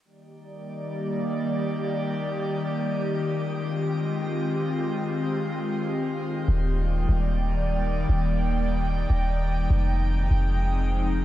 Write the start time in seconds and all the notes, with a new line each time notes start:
0.04 D#3 G3 A#3 D#4 G4 D5 G5
3.26 G#3 C4 F4 D#5
6.48 D#1 D#3 G3 A#3 D#4 D5 G5
7.09 D#1
8.09 D#1
9.10 D#1
9.70 F1 F3 G#3 C4 D#4 G#4
10.31 F1